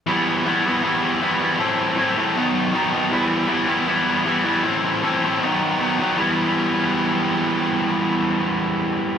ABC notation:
X:1
M:4/4
L:1/8
Q:1/4=157
K:Em
V:1 name="Distorted electric guitar" clef=bass
[E,G,B,E]2 [E,G,B,E] [E,G,B,E] [E,G,B,E]2 [E,G,B,E] [E,G,B,E] | [A,,E,A,CE]2 [A,,E,A,CE] [A,,E,A,CE] [B,,^D,F,B,^D]2 [B,,D,F,B,D] [B,,D,F,B,D] | [E,G,B,E]2 [E,G,B,E] [E,G,B,E] [E,G,B,E]2 [E,G,B,E] [E,G,B,E] | [A,,E,A,CE]2 [A,,E,A,CE] [A,,E,A,CE] [B,,^D,F,B,^D]2 [B,,D,F,B,D] [B,,D,F,B,D] |
[E,G,B,E]8- | [E,G,B,E]8 |]